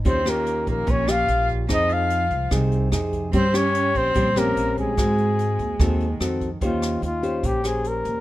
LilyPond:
<<
  \new Staff \with { instrumentName = "Flugelhorn" } { \time 4/4 \key ees \dorian \tempo 4 = 146 c''8 bes'4 bes'8 des''8 f''4 r8 | ees''8 f''4. r2 | c''8 des''4 c''4 bes'4 aes'8~ | aes'2. r4 |
f'4 f'4 g'8 aes'8 bes'4 | }
  \new Staff \with { instrumentName = "Nylon-string guitar" } { \time 4/4 \key ees \dorian << { <des' f' g'>8 <des' f' g'>2 <des' f' g'>4. | <c' ees' aes'>4. r8 <c' ees' aes'>4 <c' ees' aes'>4 | <c' des' g'>8 <des' g'>4. <c' des' g'>8 <c' des' g'>4. | <c' ges'>2 <c' ges' a'>8 r8 <c' ges' a'>8 r8 |
<des' g' c''>4 r8 <des' g' c''>4 <des' g' c''>4. | } \\ { ees2 bes,2 | f2 c2 | g2 g2 | aes2 ees2 |
ees2 bes,2 | } >> }
  \new Staff \with { instrumentName = "Cello" } { \time 4/4 \key ees \dorian c'8 bes4 bes8 des'8 f'4 r8 | ees'8 f'4. r2 | c'8 des'4 c'4 bes4 aes8~ | aes2. r4 |
r1 | }
  \new Staff \with { instrumentName = "Upright bass" } { \clef bass \time 4/4 \key ees \dorian ees,4. bes,,8 bes,,4 bes,,4 | f,4. c,8 c,4 f,4 | g,4. bes,,8 bes,,4 bes,,4 | aes,4. ees,8 ees,4 f,4 |
ees,4 ees,4 bes,,4. ees,8 | }
  \new DrumStaff \with { instrumentName = "Drums" } \drummode { \time 4/4 <hh bd>8 <hh ss>8 hh8 <hh bd>8 <hh bd>8 <hh ss>8 hh8 <hh bd>8 | <hh bd ss>8 hh8 hh8 <hh bd>8 <hh bd ss>8 hh8 <hh ss>8 <hh bd>8 | <hh bd>8 <hh ss>8 hh8 <hh bd>8 <hh bd>8 <hh ss>8 hh8 <hh bd>8 | <hh bd ss>8 hh8 hh8 <hh bd>8 <hh bd ss>8 hh8 <hh ss>8 <hh bd>8 |
<hh bd>8 <hh ss>8 hh8 hh8 <hh bd>8 <hh ss>8 hh8 hh8 | }
>>